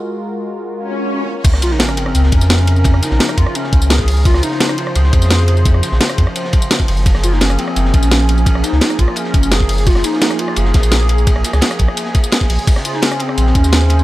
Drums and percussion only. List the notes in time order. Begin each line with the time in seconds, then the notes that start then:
1.44 kick, closed hi-hat, ride, tambourine, crash
1.54 cross-stick, snare
1.62 closed hi-hat, ride, tambourine
1.71 snare
1.79 snare, closed hi-hat, ride, tambourine
1.89 cross-stick, tambourine
1.97 closed hi-hat, ride
2.06 cross-stick
2.15 closed hi-hat, ride, tambourine
2.24 snare
2.32 kick, closed hi-hat, ride, tambourine
2.41 snare, tambourine
2.50 snare, closed hi-hat, ride, tambourine
2.58 ride
2.67 closed hi-hat, ride
2.76 tambourine
2.84 kick, closed hi-hat, ride, tambourine
2.94 cross-stick
3.03 snare, closed hi-hat, ride, tambourine
3.11 snare
3.19 snare, closed hi-hat, ride, tambourine
3.29 cross-stick, tambourine
3.37 kick, closed hi-hat, ride
3.47 cross-stick
3.55 closed hi-hat, ride, tambourine
3.64 snare
3.73 kick, closed hi-hat, ride, tambourine
3.82 tambourine
3.90 snare, closed hi-hat, ride, tambourine
3.99 kick, snare
4.08 closed hi-hat, open hi-hat
4.17 tambourine
4.25 kick, closed hi-hat, ride, tambourine
4.34 cross-stick, snare
4.43 closed hi-hat, ride, tambourine
4.51 snare
4.60 snare, closed hi-hat, ride, tambourine
4.69 cross-stick, tambourine
4.78 closed hi-hat, ride
4.87 cross-stick
4.96 closed hi-hat, ride, tambourine
5.04 snare
5.13 kick, closed hi-hat, ride, tambourine
5.22 snare, tambourine
5.30 snare, closed hi-hat, ride, tambourine
5.39 ride
5.48 closed hi-hat, ride
5.57 tambourine
5.65 kick, closed hi-hat, ride, tambourine
5.74 cross-stick
5.83 snare, closed hi-hat, ride, tambourine
5.92 snare
6.00 snare, closed hi-hat, ride, tambourine
6.10 cross-stick, tambourine
6.18 kick, closed hi-hat, ride
6.27 cross-stick
6.36 closed hi-hat, ride, tambourine
6.45 snare
6.53 kick, closed hi-hat, ride, tambourine
6.62 tambourine
6.71 snare, closed hi-hat, ride, tambourine
6.80 kick, snare
6.88 closed hi-hat, open hi-hat
6.97 tambourine
7.06 kick, closed hi-hat, ride, tambourine
7.15 cross-stick, snare
7.23 closed hi-hat, ride, tambourine
7.33 snare
7.41 snare, closed hi-hat, ride, tambourine
7.50 cross-stick, tambourine
7.59 closed hi-hat, ride
7.68 cross-stick
7.76 closed hi-hat, ride, tambourine
7.85 snare
7.94 kick, closed hi-hat, ride, tambourine
8.03 snare, tambourine
8.11 snare, closed hi-hat, ride, tambourine
8.20 ride
8.29 closed hi-hat, ride
8.38 tambourine
8.46 kick, closed hi-hat, ride, tambourine
8.55 cross-stick
8.63 snare, closed hi-hat, ride, tambourine
8.72 snare
8.81 snare, closed hi-hat, ride, tambourine
8.90 cross-stick, tambourine
8.99 kick, closed hi-hat, ride
9.08 cross-stick
9.16 closed hi-hat, ride, tambourine
9.24 snare
9.34 kick, closed hi-hat, ride, tambourine
9.43 tambourine
9.52 snare, closed hi-hat, ride, tambourine
9.60 kick, snare
9.69 closed hi-hat, open hi-hat
9.78 tambourine
9.87 kick, closed hi-hat, ride, tambourine
9.95 cross-stick, snare
10.04 closed hi-hat, ride, tambourine
10.13 snare
10.21 snare, closed hi-hat, ride, tambourine
10.31 cross-stick, tambourine
10.39 closed hi-hat, ride
10.48 cross-stick
10.56 closed hi-hat, ride, tambourine
10.65 snare
10.74 kick, snare, closed hi-hat, ride, tambourine
10.83 snare, tambourine
10.92 snare, closed hi-hat, ride, tambourine
11.01 ride
11.09 closed hi-hat, ride
11.18 tambourine
11.27 kick, closed hi-hat, ride, tambourine
11.36 cross-stick
11.44 snare, closed hi-hat, ride, tambourine
11.53 cross-stick, snare, tambourine
11.61 snare, closed hi-hat, ride, tambourine
11.71 cross-stick, tambourine
11.79 kick, closed hi-hat, ride
11.88 cross-stick
11.97 closed hi-hat, ride, tambourine
12.05 snare
12.15 kick, closed hi-hat, ride, tambourine
12.24 tambourine
12.32 snare, closed hi-hat, ride, tambourine
12.41 kick, snare
12.50 closed hi-hat, open hi-hat
12.59 tambourine
12.67 kick, closed hi-hat, crash, ride, tambourine
12.76 cross-stick, snare
12.85 closed hi-hat, ride, tambourine
12.93 snare
13.02 snare, closed hi-hat, ride, tambourine
13.12 cross-stick, tambourine
13.19 closed hi-hat, ride
13.29 cross-stick
13.38 closed hi-hat, ride, tambourine
13.47 snare
13.55 kick, closed hi-hat, ride, tambourine
13.64 snare, tambourine
13.72 snare, closed hi-hat, ride, tambourine
13.81 ride
13.90 closed hi-hat, ride
13.99 tambourine